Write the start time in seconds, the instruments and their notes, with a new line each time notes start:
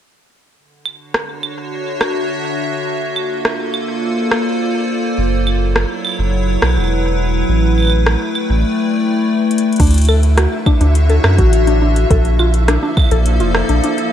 0.57 ambient pad D3
0.74 ambient pad D4
0.81 ambient pad F#4
0.86 ambient pad C#5, claves
1.14 cross-stick
1.37 ambient pad E5
1.43 claves
2.01 cross-stick, claves
2.87 ambient pad A#3
2.94 ambient pad F4 A4
3.16 claves
3.45 cross-stick
3.54 ambient pad C5 D5
3.74 claves
4.31 cross-stick
5.18 analog synth bass F#1, ambient pad F#3
5.28 ambient pad E4
5.36 ambient pad C#5
5.47 claves
5.65 ambient pad B4 F#5
5.76 cross-stick
6.05 claves
6.07 claves
6.09 claves
6.19 analog synth bass F#1
6.62 analog synth bass B1, cross-stick, claves
6.66 claves
6.69 claves
6.73 claves
6.77 analog synth bass E1, claves
6.80 claves
6.84 claves
6.87 claves
7.49 analog synth bass A1, ambient pad A3
7.78 claves
7.80 claves
7.83 claves
7.85 claves
7.87 claves
7.90 claves
7.96 ambient pad G5
8.03 ambient pad D5, cross-stick
8.35 claves
8.50 analog synth bass A1
9.51 closed hi-hat
9.58 closed hi-hat
9.73 closed hi-hat
9.76 closed hi-hat
9.80 analog synth bass D2, ambient pad D3, synth arpeggio sound D4, synth texture E4 E5, kick, closed hi-hat, crash
9.83 closed hi-hat
9.87 closed hi-hat
9.91 closed hi-hat
9.94 ambient pad D4, closed hi-hat
9.98 closed hi-hat
10.02 closed hi-hat
10.04 closed hi-hat
10.08 synth arpeggio sound A4, ambient pad E5, claves
10.23 ambient pad F#4, closed hi-hat
10.37 synth arpeggio sound F#4, ambient pad C#5, cross-stick, closed hi-hat
10.66 synth arpeggio sound D4, kick, claves
10.81 analog synth bass D2, synth arpeggio sound D4, closed hi-hat
10.95 closed hi-hat
11.10 synth arpeggio sound A4, closed hi-hat
11.24 analog synth bass F#2, cross-stick, claves
11.38 analog synth bass A1, synth arpeggio sound F#4, kick, closed hi-hat
11.53 closed hi-hat
11.67 synth arpeggio sound D4, closed hi-hat
11.82 synth arpeggio sound D4
11.96 closed hi-hat
12.11 analog synth bass A#1, ambient pad A#3, synth arpeggio sound A4, kick, closed hi-hat
12.24 ambient pad F3 A4, closed hi-hat
12.39 synth arpeggio sound F4, claves
12.45 ambient pad D5
12.54 closed hi-hat
12.68 synth arpeggio sound D4, cross-stick, closed hi-hat
12.73 ambient pad C5
12.83 synth arpeggio sound D4
12.97 kick, claves
12.99 claves
13.04 claves
13.11 analog synth bass A#1, synth arpeggio sound A4, closed hi-hat
13.26 closed hi-hat
13.40 analog synth bass F1, synth arpeggio sound F4, closed hi-hat
13.55 cross-stick
13.69 analog synth bass A#1, synth arpeggio sound D4, closed hi-hat
13.84 synth arpeggio sound D4, closed hi-hat
13.98 closed hi-hat